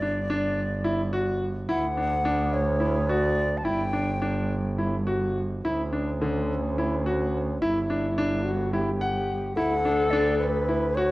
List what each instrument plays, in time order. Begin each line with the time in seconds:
Already playing: double bass G1, flute D5
0.02 grand piano D4
0.30 grand piano D4
0.84 grand piano E4
1.13 grand piano F#4
1.69 double bass D2, grand piano E4, flute F#5
1.97 grand piano D4
2.25 grand piano D4
2.53 flute C#5
2.80 grand piano E4
3.09 grand piano F#4, flute D5
3.57 flute A5
3.64 double bass G1, grand piano E4, flute G5
3.93 grand piano D4
4.22 grand piano D4
4.78 grand piano E4
5.07 grand piano F#4
5.63 double bass D2, french horn C#4, grand piano E4
5.92 grand piano D4
6.21 grand piano D3
6.78 grand piano E4
7.06 grand piano F#4
7.61 double bass G1, french horn E4, grand piano E4
7.90 grand piano D4
8.18 grand piano D4
8.44 french horn F#4
8.72 grand piano E4, french horn G4
9.01 grand piano F#5
9.56 double bass D2, grand piano E4, french horn A4, flute F#5
9.85 grand piano D4
10.11 grand piano D4, flute D5
10.39 flute B4
10.69 grand piano E4
10.95 grand piano F#4, flute C#5